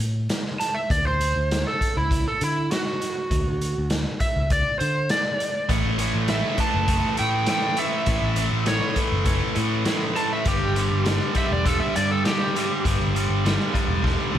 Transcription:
0.00 picked electric bass A2
0.29 snare, closed hi-hat
0.46 snare
0.60 electric slide guitar A5, snare, closed hi-hat
0.75 electric slide guitar E5
0.90 picked electric bass D2, electric slide guitar D5, kick, closed hi-hat
1.05 picked electric bass D2, electric slide guitar C5
1.21 closed hi-hat
1.36 picked electric bass D2
1.51 snare, closed hi-hat
1.68 electric slide guitar A4
1.81 kick, closed hi-hat
1.97 picked electric bass C#2, electric slide guitar E4
2.11 kick, closed hi-hat
2.28 electric slide guitar A4
2.41 picked electric bass D3, electric slide guitar E4, closed hi-hat
2.71 electric slide guitar F#4, snare, closed hi-hat
2.87 snare
3.02 snare, closed hi-hat
3.31 picked electric bass D2, kick, closed hi-hat
3.48 picked electric bass D2
3.61 closed hi-hat
3.78 picked electric bass D2
3.90 snare, closed hi-hat
4.20 electric slide guitar E5, kick, closed hi-hat
4.36 picked electric bass C#2
4.50 electric slide guitar D5, kick, closed hi-hat
4.80 picked electric bass D3, electric slide guitar C5, closed hi-hat
5.09 electric slide guitar D5, snare, closed hi-hat
5.40 closed hi-hat
5.69 picked electric bass A1, overdriven electric guitar A2 E3 A3, kick, closed hi-hat
5.84 picked electric bass A1
5.98 overdriven electric guitar A2 E3 A3, closed hi-hat
6.14 picked electric bass A1
6.28 overdriven electric guitar A2 E3 A3, electric slide guitar E5, snare, closed hi-hat
6.58 overdriven electric guitar A2 E3 A3, electric slide guitar A5, kick, closed hi-hat
6.75 picked electric bass F#1
6.88 overdriven electric guitar A2 E3 A3, kick, closed hi-hat
7.17 overdriven electric guitar A2 E3 A3, picked electric bass A2, electric slide guitar G5, closed hi-hat
7.46 overdriven electric guitar A2 E3 A3, electric slide guitar G5, snare, closed hi-hat
7.77 overdriven electric guitar A2 E3 A3, electric slide guitar E5, closed hi-hat
8.06 picked electric bass A1, overdriven electric guitar A2 E3 A3, kick, closed hi-hat
8.22 picked electric bass A1
8.36 overdriven electric guitar A2 E3 A3, closed hi-hat
8.52 picked electric bass A1
8.66 overdriven electric guitar A2 E3 A3, electric slide guitar C#5, snare, closed hi-hat
8.96 overdriven electric guitar A2 E3 A3, kick, closed hi-hat
9.12 picked electric bass F#1
9.25 overdriven electric guitar A2 E3 A3, kick, closed hi-hat
9.55 overdriven electric guitar A2 E3 A3, picked electric bass A2, closed hi-hat
9.85 overdriven electric guitar A2 E3 A3, snare, closed hi-hat
10.16 overdriven electric guitar A2 E3 A3, electric slide guitar A5, closed hi-hat
10.33 electric slide guitar E5
10.45 picked electric bass G1, overdriven electric guitar G2 D3 G3, electric slide guitar G4, kick, closed hi-hat
10.62 picked electric bass G1
10.76 overdriven electric guitar G2 D3 G3, closed hi-hat
10.91 picked electric bass G1
11.04 overdriven electric guitar G2 D3 G3, snare, closed hi-hat
11.34 overdriven electric guitar G2 D3 G3, electric slide guitar E5, kick, closed hi-hat
11.51 picked electric bass E1, electric slide guitar D5
11.65 overdriven electric guitar G2 D3 G3, electric slide guitar A4, kick, closed hi-hat
11.80 electric slide guitar E5
11.95 overdriven electric guitar G2 D3 G3, picked electric bass G2, electric slide guitar D5, closed hi-hat
12.11 electric slide guitar A4
12.25 overdriven electric guitar G2 D3 G3, electric slide guitar G4, snare, closed hi-hat
12.55 overdriven electric guitar G2 D3 G3, closed hi-hat
12.85 picked electric bass G1, overdriven electric guitar G2 D3 G3, kick, closed hi-hat
13.00 picked electric bass G1
13.14 overdriven electric guitar G2 D3 G3, closed hi-hat
13.29 picked electric bass G1
13.45 overdriven electric guitar G2 D3 G3, snare, closed hi-hat
13.73 overdriven electric guitar G2 D3 G3, kick, closed hi-hat
13.88 picked electric bass E1
14.03 overdriven electric guitar G2 D3 G3, kick, snare
14.31 picked electric bass C#2, overdriven electric guitar G2 D3 G3, high tom

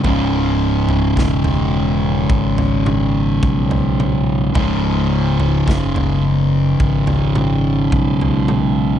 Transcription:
0.03 fingered electric bass C#1, distorted electric guitar C#2 G#2 C#3, kick, floor tom
0.89 floor tom
1.17 fingered electric bass E1, kick, snare
1.44 floor tom
2.30 fingered electric bass G#1, kick
2.58 floor tom
2.86 mid tom
3.43 fingered electric bass B1, kick
3.71 floor tom
4.00 mid tom
4.54 fingered electric bass C#1, distorted electric guitar C#2 G#2 C#3, kick, floor tom
5.40 floor tom
5.67 fingered electric bass F#1, kick, snare
5.96 floor tom
6.80 fingered electric bass G#1, kick
7.07 floor tom
7.35 mid tom
7.92 fingered electric bass B1, kick
8.21 floor tom
8.48 mid tom

